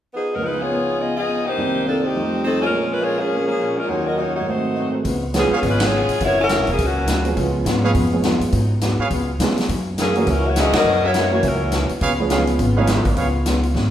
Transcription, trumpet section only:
5.51 G#4 B4 C#5 F5
7.83 G#4 B4 C#5 F5
8.99 G#4 B4 C#5 F5
10.56 F#4 A#4 C#5 E5
11.03 F#4 A#4 C#5 E5
12.01 G#4 B4 C#5 F5
12.31 G#4 B4 C#5 F5
12.76 G#4 B4 C#5 F5
13.16 G#4 B4 C#5 F5

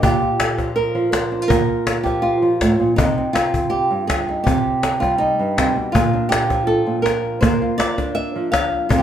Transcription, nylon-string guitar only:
0.02 A#2 G4
0.22 F4
0.40 A4
0.58 F3
0.76 A#4
0.95 F3
1.12 C5
1.32 D4
1.42 F4
1.48 A#2 A#4
2.03 F3 G4
2.22 F4
2.42 F3
2.62 A2
2.80 A#2
2.96 C3 D#4
3.18 C4
3.33 F4
3.70 G4
3.91 G2
4.07 G#4
4.29 D#4
4.44 C3 G4
5.00 G3 F4
5.18 D#4
5.39 G2
5.57 C3
5.77 B2
5.92 A#2 F4
6.14 D4
6.29 G4
6.50 F3
6.67 A4
6.87 A#2
7.02 A#4
7.41 A#3 C5
7.62 F4
7.78 D5
7.98 D4
8.15 E5
8.36 F3
8.52 F5
8.89 C3 F4
8.98 G4

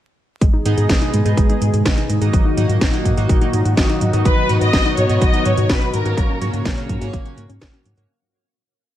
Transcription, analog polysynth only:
0.66 B3 D#4 G#4 D#5
1.01 B3 D#4 G#4 D#5
1.25 B3 D#4 G#4 D#5
1.49 B3 D#4 G#4 D#5
1.85 B3 D#4 G#4 D#5
2.21 A#3 D#4 F#4 D#5
2.57 A#3 D#4 F#4 D#5
2.93 A#3 D#4 F#4 D#5
3.17 A#3 D#4 F#4 D#5
3.41 A#3 D#4 F#4 D#5
3.77 A#3 D#4 F#4 D#5
4.13 B3 D#4 F#4 D#5
4.49 B3 D#4 F#4 D#5
4.85 B3 D#4 F#4 D#5
5.09 B3 D#4 F#4 D#5
5.34 B3 D#4 F#4 D#5
5.69 B3 D#4 F#4 D#5
6.05 A#3 C#4 F#4 C#5
6.41 A#3 C#4 F#4 C#5
6.77 A#3 C#4 F#4 C#5
7.01 A#3 C#4 F#4 C#5
7.25 A#3 C#4 F#4 C#5
7.61 A#3 C#4 F#4 C#5
7.97 A#3 C#4 F#4 C#5

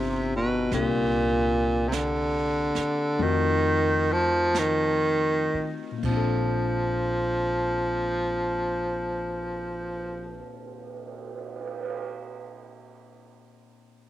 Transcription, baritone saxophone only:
Already playing: C3
0.36 B2
0.74 A#2
1.89 C3
1.95 D3
3.22 D#3
4.12 F3
4.59 D#3
6.05 F3

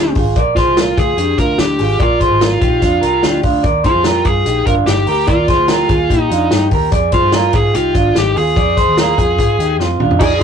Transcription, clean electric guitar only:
Already playing: D4 G4
0.16 F4 G#4
0.37 A#4 D5
0.57 G#4 C5
0.77 F4 A#4
0.97 F4 G#4
1.18 D4 G4
1.38 D4 F4
1.58 D4 G4
1.79 F4 G#4
1.99 A#4 D5
2.20 G#4 C5
2.40 F4 A#4
2.61 D#4 G4
2.81 D4 F4
3.01 G4 A#4
3.23 D4 G4
3.43 D4 F4
3.63 A#4 D5
3.84 G#4 C5
4.04 G4 A#4
4.25 F4 G#4
4.46 D#4 G4
4.66 D4 F4
4.86 D#4 G4
5.07 G4 A#4
5.27 A#4 D5
5.48 G#4 C5
5.69 G4 A#4
5.89 F4 G#4
6.10 D#4 G4
6.30 D4 F4
6.51 D#4 G4
6.72 G4 A#4
6.92 G#4 D5
7.12 G#4 C5
7.34 F4 A#4
7.53 F4 G#4
7.74 D#4 G4
7.94 D4 F4
8.15 D#4 G4
8.36 F4 G#4
8.57 G#4 D5
8.77 G#4 C5
8.97 F4 A#4
9.18 F4 G#4
9.39 F4 G#4
9.59 D#4 G4
9.79 C4 F4
10.00 D4 F4
10.20 G#4 D5

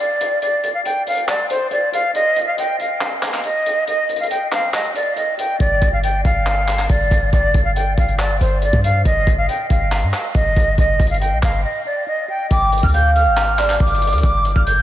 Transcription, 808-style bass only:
5.60 G1
5.82 G1
6.25 G1
6.90 G1
7.11 G1
7.33 G1
7.54 G1
7.98 G1
8.41 G1
8.73 G2
9.05 G1
9.27 G1
9.70 G1
10.03 G2
10.35 G1
10.57 G1
10.78 G1
11.00 G1
11.32 A#1
11.43 G1
12.51 G1
12.83 D2
13.26 G#1
13.80 G1
14.13 D2
14.23 G1
14.56 G1

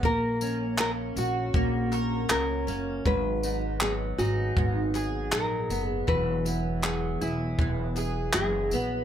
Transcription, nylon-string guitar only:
0.05 A#4
0.80 A#4
1.19 F#4
2.31 A#4
3.06 B4
3.82 G#4
4.18 F#4
5.32 A#4
5.89 G#4
6.08 B4
6.83 G#4
7.21 E4
8.34 G#4

